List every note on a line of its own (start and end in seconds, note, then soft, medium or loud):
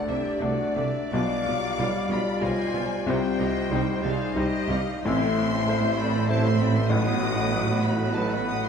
0.00 1.10 C2 medium
0.00 1.10 C3 medium
0.00 0.38 A3 medium
0.00 1.10 A3 medium
0.00 0.38 D4 medium
0.00 1.10 D4 medium
0.00 0.38 D5 medium
0.00 0.42 D5 medium
0.00 3.10 D5 medium
0.08 0.18 C2 medium
0.08 0.23 C2 medium
0.08 0.16 C3 medium
0.08 0.17 A3 medium
0.08 0.17 D4 medium
0.08 0.42 G4 medium
0.08 0.42 E5 loud
0.08 0.41 E5 medium
0.40 0.56 C2 medium
0.40 0.50 C2 medium
0.40 0.48 C3 medium
0.40 0.48 A3 medium
0.40 1.10 A3 medium
0.40 0.48 D4 medium
0.40 1.10 D4 medium
0.40 0.87 F#4 medium
0.40 1.13 D5 loud
0.40 1.14 D5 medium
0.40 1.11 D5 medium
0.40 0.77 F#5 medium
0.75 0.84 C2 medium
0.75 0.92 C2 medium
0.75 0.84 C3 medium
0.75 0.84 A3 medium
0.75 0.83 D4 medium
0.75 1.12 E5 medium
1.12 1.21 B1 medium
1.12 3.04 B1 medium
1.12 1.28 B1 medium
1.12 1.21 B2 medium
1.12 3.04 B2 medium
1.12 1.20 G3 medium
1.12 4.85 G3 medium
1.12 1.21 F4 medium
1.12 3.73 F4 medium
1.12 1.77 D5 medium
1.12 2.08 F5 loud
1.12 2.08 D6 loud
1.12 2.10 D6 loud
1.46 1.55 B1 medium
1.46 1.60 B1 medium
1.46 1.54 B2 medium
1.46 1.55 G3 medium
1.46 1.55 F4 medium
1.78 1.87 B1 medium
1.78 1.92 B1 medium
1.78 1.86 B2 medium
1.78 1.86 G3 medium
1.78 2.38 G3 medium
1.78 1.86 F4 medium
1.78 2.39 F4 medium
1.78 2.39 D5 medium
1.78 2.43 F5 medium
2.08 2.18 B1 medium
2.08 2.23 B1 medium
2.08 2.17 B2 loud
2.08 2.16 G3 medium
2.08 2.17 F4 medium
2.08 2.42 D5 medium
2.08 2.42 B5 loud
2.40 2.54 B1 medium
2.40 2.50 B1 medium
2.40 2.49 B2 medium
2.40 2.49 G3 medium
2.40 3.04 G3 medium
2.40 2.48 F4 medium
2.40 3.04 F4 medium
2.40 3.06 C5 loud
2.40 3.04 D5 medium
2.40 2.76 D#5 medium
2.40 3.05 G#5 loud
2.40 3.08 G#5 loud
2.72 2.82 B1 medium
2.72 2.88 B1 medium
2.72 2.82 B2 medium
2.72 2.80 G3 medium
2.72 2.80 F4 medium
2.72 3.06 D5 medium
3.06 3.20 C2 loud
3.06 5.00 C2 loud
3.06 3.15 C2 medium
3.06 5.00 C3 medium
3.06 3.15 C3 medium
3.06 3.15 G3 medium
3.06 3.14 D#4 medium
3.06 4.02 C5 loud
3.06 3.40 C5 medium
3.06 4.87 C5 medium
3.06 4.05 G5 loud
3.06 4.05 G5 medium
3.39 3.53 C2 medium
3.39 3.48 C2 medium
3.39 3.47 C3 medium
3.39 3.47 G3 medium
3.39 3.48 D#4 medium
3.39 3.73 D#5 medium
3.71 3.79 C2 medium
3.71 3.85 C2 medium
3.71 3.79 C3 loud
3.71 4.31 G3 medium
3.71 3.82 G3 medium
3.71 4.32 D#4 medium
3.71 4.85 D#4 medium
3.71 3.82 D#4 medium
3.71 4.05 C5 medium
3.71 4.32 C5 medium
4.02 4.16 C2 medium
4.02 4.11 C2 medium
4.02 4.11 C3 loud
4.02 4.13 G3 medium
4.02 4.13 D#4 medium
4.02 4.36 G#4 loud
4.02 4.35 D5 medium
4.02 4.36 F5 loud
4.02 4.36 F5 medium
4.33 4.48 C2 medium
4.33 4.42 C2 medium
4.33 4.41 C3 medium
4.33 5.00 G3 medium
4.33 4.44 G3 medium
4.33 4.44 D#4 medium
4.33 5.01 D#4 medium
4.33 4.79 G4 loud
4.33 5.01 C5 medium
4.33 4.70 D#5 loud
4.33 5.05 D#5 loud
4.38 5.06 D#5 loud
4.68 4.76 C2 medium
4.68 4.83 C2 medium
4.68 4.76 C3 loud
4.68 4.77 G3 medium
4.68 4.78 D#4 medium
4.68 5.04 F5 loud
5.02 8.69 A1 loud
5.02 6.88 A1 medium
5.02 8.69 A2 loud
5.02 6.87 A2 loud
5.02 6.86 A3 medium
5.02 5.20 C4 medium
5.02 6.86 E4 loud
5.02 5.20 E4 medium
5.02 6.87 C5 medium
5.02 5.97 E5 loud
5.02 5.46 E5 medium
5.02 5.97 C6 loud
5.02 5.99 C6 loud
5.21 5.37 A3 medium
5.21 5.37 C4 medium
5.37 5.51 C4 medium
5.37 5.53 E4 medium
5.52 5.68 A3 medium
5.52 5.67 C4 medium
5.68 6.25 A3 medium
5.68 5.82 C4 medium
5.68 5.82 E4 medium
5.68 6.26 E4 medium
5.68 6.00 C5 medium
5.68 6.26 C5 medium
5.82 5.98 A3 medium
5.82 5.97 C4 medium
5.98 6.13 C4 medium
5.98 6.14 E4 medium
5.98 6.29 D5 medium
5.98 6.30 D5 medium
5.98 6.29 B5 loud
5.98 6.30 B5 loud
6.14 6.30 A3 medium
6.14 6.27 C4 medium
6.28 6.87 A3 medium
6.28 6.41 C4 medium
6.28 6.43 E4 medium
6.28 6.87 E4 medium
6.28 6.88 C5 medium
6.28 6.45 C5 loud
6.28 6.91 E5 loud
6.28 6.44 A5 loud
6.42 6.59 A3 medium
6.42 6.57 C4 medium
6.42 6.60 E5 medium
6.42 6.60 C6 loud
6.58 6.73 C4 medium
6.58 6.74 E4 medium
6.58 6.75 D5 loud
6.58 6.75 B5 loud
6.74 6.89 A3 medium
6.74 6.90 C4 medium
6.74 6.91 E5 medium
6.74 6.91 C6 loud
6.89 8.69 A1 medium
6.89 8.69 A2 loud
6.89 8.69 F#3 medium
6.89 7.05 A3 medium
6.89 7.05 D#4 medium
6.89 8.69 F#4 medium
6.89 8.69 B4 medium
6.89 7.84 F#5 loud
6.89 7.25 F#5 medium
6.89 7.82 D#6 loud
6.89 7.84 D#6 loud
7.06 7.22 B3 medium
7.06 7.22 F#4 medium
7.23 7.39 A3 medium
7.23 7.39 D#4 medium
7.23 7.54 D#5 medium
7.39 7.54 B3 medium
7.39 7.54 F#4 medium
7.52 8.12 F#3 medium
7.52 7.69 A3 medium
7.52 7.69 D#4 medium
7.52 8.13 F#4 medium
7.52 8.13 B4 medium
7.52 8.15 F#5 medium
7.71 7.86 B3 medium
7.71 7.86 F#4 medium
7.83 8.02 A3 medium
7.83 8.02 D#4 medium
7.83 8.15 D#5 medium
7.83 8.16 B5 loud
8.02 8.17 B3 medium
8.02 8.17 F#4 medium
8.14 8.69 F#3 medium
8.14 8.32 A3 medium
8.14 8.69 F#4 medium
8.14 8.69 B4 medium
8.14 8.31 D#5 loud
8.14 8.69 F#5 loud
8.14 8.31 A5 loud
8.14 8.32 A5 medium
8.18 8.32 D#4 medium
8.31 8.49 B3 medium
8.31 8.49 F#4 medium
8.31 8.48 D#5 medium
8.31 8.48 B5 loud
8.31 8.48 B5 medium
8.46 8.65 A3 medium
8.46 8.65 D#4 medium
8.46 8.65 F#5 loud
8.46 8.63 D#6 loud
8.46 8.64 D#6 loud
8.62 8.69 E5 loud
8.62 8.69 C6 medium
8.62 8.69 C6 loud